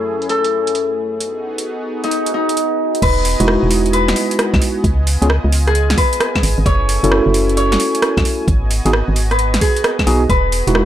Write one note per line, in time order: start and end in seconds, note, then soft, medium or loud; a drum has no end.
0.00 1.19 F#2 medium
0.00 1.19 A3 medium
0.00 1.19 C#4 medium
0.00 1.19 E4 medium
0.00 1.19 G#4 medium
0.00 0.29 A4 medium
0.00 0.76 B4 medium
0.22 closed hi-hat soft
0.29 2.49 A4 medium
0.29 closed hi-hat medium
0.44 closed hi-hat medium
0.67 closed hi-hat medium
0.75 closed hi-hat medium
1.21 3.01 B3 medium
1.21 3.01 D#4 medium
1.21 3.01 F#4 medium
1.21 3.01 G#4 medium
1.21 closed hi-hat medium
1.58 closed hi-hat medium
2.04 2.34 D#4 medium
2.04 closed hi-hat soft
2.11 closed hi-hat medium
2.26 closed hi-hat medium
2.34 5.04 D#4 medium
2.49 closed hi-hat medium
2.57 closed hi-hat medium
2.95 closed hi-hat soft
3.02 3.36 E1 loud
3.02 6.62 B3 medium
3.02 4.82 F#4 medium
3.02 3.93 B4 loud
3.02 6.62 D#5 medium
3.02 10.85 G#5 medium
3.02 kick loud
3.02 closed hi-hat medium
3.02 crash loud
3.25 open hi-hat loud
3.40 3.57 E1 loud
3.40 4.83 G#3 medium
3.40 4.83 D#4 medium
3.40 4.83 E4 medium
3.40 4.83 F#4 medium
3.40 closed hi-hat medium
3.48 cross-stick loud
3.63 4.14 E1 medium
3.71 open hi-hat loud
3.86 closed hi-hat soft
3.93 5.97 B4 medium
3.93 closed hi-hat medium
4.08 snare medium
4.08 closed hi-hat medium
4.16 open hi-hat loud
4.31 closed hi-hat medium
4.39 cross-stick loud
4.39 closed hi-hat medium
4.54 4.60 B1 medium
4.54 kick loud
4.54 snare medium
4.54 claves medium
4.62 open hi-hat loud
4.84 5.17 C#2 loud
4.84 6.64 F4 medium
4.84 kick loud
4.84 closed hi-hat medium
5.07 open hi-hat loud
5.22 5.39 C#2 loud
5.22 5.27 B3 medium
5.22 5.27 C#4 medium
5.22 5.27 F4 medium
5.22 5.27 G#4 loud
5.22 closed hi-hat medium
5.30 cross-stick loud
5.44 5.95 C#2 loud
5.52 open hi-hat loud
5.67 7.95 G#4 medium
5.67 cross-stick medium
5.67 closed hi-hat soft
5.75 closed hi-hat medium
5.90 snare medium
5.90 closed hi-hat medium
5.98 8.02 B4 loud
5.98 kick loud
5.98 open hi-hat loud
6.13 closed hi-hat medium
6.20 cross-stick loud
6.20 closed hi-hat medium
6.35 kick medium
6.35 snare medium
6.35 claves medium
6.43 6.55 G#1 medium
6.43 open hi-hat loud
6.58 6.64 G#1 loud
6.66 6.99 F#1 loud
6.66 8.46 A3 medium
6.66 8.46 C#4 medium
6.66 8.46 E4 medium
6.66 7.57 C#5 loud
6.66 kick loud
6.66 closed hi-hat medium
6.89 open hi-hat loud
7.03 7.21 F#1 medium
7.03 8.47 C#4 medium
7.03 8.47 E4 medium
7.03 8.47 F#4 medium
7.03 8.47 A4 medium
7.03 closed hi-hat medium
7.12 cross-stick loud
7.26 7.77 F#1 loud
7.34 open hi-hat loud
7.49 closed hi-hat soft
7.57 9.48 C#5 medium
7.57 closed hi-hat medium
7.72 snare medium
7.72 closed hi-hat medium
7.80 open hi-hat loud
7.95 closed hi-hat medium
8.02 cross-stick loud
8.02 closed hi-hat medium
8.17 8.24 C#2 medium
8.17 kick loud
8.17 snare medium
8.17 claves medium
8.25 open hi-hat loud
8.48 8.81 G#1 loud
8.48 10.28 B3 medium
8.48 10.28 F#4 medium
8.48 10.85 D#5 medium
8.48 kick loud
8.48 closed hi-hat medium
8.71 open hi-hat loud
8.85 9.03 G#1 medium
8.85 8.91 B3 medium
8.85 8.91 D#4 medium
8.85 8.91 F#4 medium
8.85 8.91 G#4 loud
8.85 closed hi-hat medium
8.93 cross-stick loud
9.08 9.59 G#1 medium
9.16 open hi-hat loud
9.31 10.29 B4 loud
9.31 cross-stick medium
9.31 closed hi-hat soft
9.39 closed hi-hat medium
9.54 snare medium
9.54 closed hi-hat medium
9.61 10.85 G#4 medium
9.61 kick loud
9.61 open hi-hat loud
9.77 closed hi-hat medium
9.84 cross-stick loud
9.84 closed hi-hat medium
9.99 kick medium
9.99 snare medium
9.99 claves medium
10.07 10.27 B1 medium
10.07 10.23 B3 loud
10.07 10.23 D#4 medium
10.07 10.23 F#4 medium
10.07 10.23 G#4 loud
10.07 open hi-hat loud
10.30 10.63 E1 loud
10.30 10.85 B3 medium
10.30 10.85 F#4 medium
10.30 10.85 B4 loud
10.30 kick loud
10.30 closed hi-hat medium
10.52 open hi-hat loud
10.67 10.84 E1 medium
10.67 10.85 G#3 medium
10.67 10.85 D#4 medium
10.67 10.85 E4 medium
10.67 10.85 F#4 medium
10.67 closed hi-hat medium
10.75 cross-stick loud